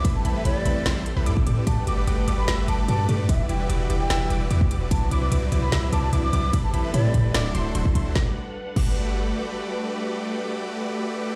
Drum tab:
CC |----------------|----------------|----------------|----------------|
RD |x---------------|x---------------|x---------------|x---------------|
HH |x-x-x-x-x-x-x-x-|x-x-x-x-x-x-x-x-|x-x-x-x-x-x-x-x-|x-x-x-x-x-x-x-x-|
SD |--------o-------|--------o-------|--------o-------|--------o-------|
BD |o------------o--|o---------------|o------------o--|o---------------|

CC |----------------|------x---------|----------------|
RD |x---------------|----------------|----------------|
HH |x-x-x-x-x-x-x-x-|----------------|----------------|
SD |--------o-------|o---------------|----------------|
BD |o-----o------oo-|o-----o---------|----------------|